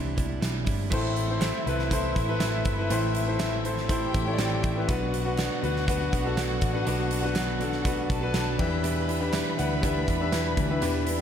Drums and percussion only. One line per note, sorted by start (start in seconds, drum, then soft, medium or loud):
0.18 kick medium
0.18 closed hi-hat medium
0.42 snare loud
0.42 clap medium
0.42 closed hi-hat medium
0.66 kick medium
0.66 open hi-hat medium
0.92 kick loud
0.92 crash loud
1.16 closed hi-hat medium
1.41 snare loud
1.41 clap medium
1.41 closed hi-hat medium
1.67 closed hi-hat medium
1.79 snare soft
1.91 kick medium
1.91 closed hi-hat loud
2.16 kick medium
2.16 closed hi-hat medium
2.40 snare loud
2.40 clap medium
2.40 closed hi-hat loud
2.65 kick loud
2.65 closed hi-hat medium
2.90 closed hi-hat loud
3.15 closed hi-hat medium
3.40 snare loud
3.40 clap medium
3.40 closed hi-hat medium
3.65 closed hi-hat medium
3.77 snare soft
3.89 kick medium
3.89 closed hi-hat loud
4.14 kick loud
4.14 closed hi-hat medium
4.39 snare loud
4.39 clap medium
4.39 closed hi-hat medium
4.63 kick loud
4.63 closed hi-hat medium
4.89 kick loud
4.89 closed hi-hat medium
5.14 closed hi-hat medium
5.38 snare loud
5.38 clap medium
5.38 closed hi-hat medium
5.64 closed hi-hat medium
5.76 snare soft
5.88 kick loud
5.88 closed hi-hat loud
6.13 kick medium
6.13 closed hi-hat medium
6.37 snare loud
6.37 clap medium
6.37 closed hi-hat medium
6.61 kick medium
6.61 closed hi-hat medium
6.87 closed hi-hat medium
7.11 closed hi-hat medium
7.36 snare loud
7.36 clap medium
7.36 closed hi-hat medium
7.61 closed hi-hat medium
7.72 snare soft
7.85 kick loud
7.85 closed hi-hat loud
8.10 kick medium
8.10 closed hi-hat medium
8.34 snare loud
8.34 clap medium
8.34 closed hi-hat medium
8.59 kick loud
8.59 crash medium
8.84 closed hi-hat loud
9.09 closed hi-hat medium
9.33 snare loud
9.33 clap medium
9.33 closed hi-hat medium
9.59 closed hi-hat medium
9.83 kick loud
9.83 closed hi-hat medium
10.08 kick medium
10.08 closed hi-hat medium
10.33 snare loud
10.33 clap medium
10.33 closed hi-hat medium
10.57 kick medium
10.57 closed hi-hat medium
10.82 closed hi-hat loud
11.07 closed hi-hat medium